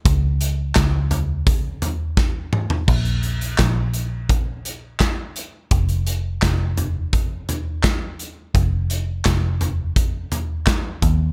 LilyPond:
<<
  \new Staff \with { instrumentName = "Picked electric bass" } { \clef bass \time 4/4 \key f \phrygian \tempo 4 = 85 des,4 des,2. | bes,,4 bes,,2. | f,,4 f,,2. | f,,4 f,,2~ f,,8 ees,8 | }
  \new DrumStaff \with { instrumentName = "Drums" } \drummode { \time 4/4 <hh bd>8 hh8 <hc hh bd sn>8 <hh tomfh>8 <hh bd>8 <hh tomfh>8 <bd sn>8 toml16 tomfh16 | <cymc bd>16 hh16 hh16 hh16 <hc hh bd sn>8 hh8 <hh bd>8 hh8 <hc hh bd sn>8 hh8 | <hh bd>16 hh16 hh8 <hc hh bd sn>8 <hh tomfh>8 <hh bd>8 <hh tomfh>8 <hc hh bd sn>8 hh8 | <hh bd>8 hh8 <hc hh bd sn>8 <hh tomfh>8 <hh bd>8 <hh tomfh>8 <hc hh bd sn>8 <hh bd>8 | }
>>